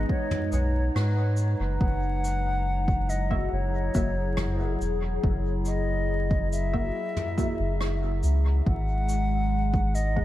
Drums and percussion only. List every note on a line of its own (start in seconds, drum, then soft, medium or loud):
0.09 kick loud
0.31 mid tom medium
0.52 cabasa medium
0.96 cross-stick medium
1.37 cabasa medium
1.81 kick loud
2.24 cabasa medium
2.88 kick loud
3.10 cabasa medium
3.31 kick medium
3.94 kick loud
3.94 cabasa medium
4.37 cross-stick medium
4.37 mid tom medium
4.81 cabasa medium
5.24 kick loud
5.65 cabasa medium
6.31 kick loud
6.53 cabasa medium
6.74 kick medium
7.17 mid tom medium
7.38 kick loud
7.38 cabasa medium
7.81 cross-stick medium
8.23 cabasa medium
8.66 kick loud
9.09 cabasa medium
9.74 kick loud
9.95 cabasa medium
10.17 kick medium